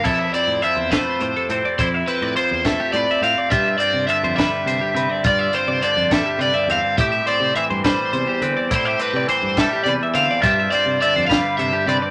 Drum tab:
CC |x-----|------|------|------|
HH |-xxxxx|xxxxxx|xxxxxx|xxxxxx|
SD |---o--|---o--|---o--|---o--|
BD |o--o--|o--o--|o--o--|o--o--|

CC |------|------|------|
HH |xxxxxx|xxxxxx|xxxxxx|
SD |---o--|---o--|---o--|
BD |o--o--|o--o--|o--o--|